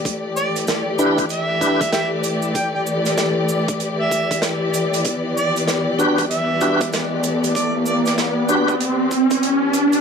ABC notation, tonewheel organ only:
X:1
M:4/4
L:1/16
Q:"Swing 16ths" 1/4=96
K:Em
V:1 name="Tonewheel organ"
z6 [DEGB]2 z2 [DEGB] z4 z | z16 | z6 [DFGB]2 z2 [DFGB] z4 z | z6 [DFGB]2 z8 |]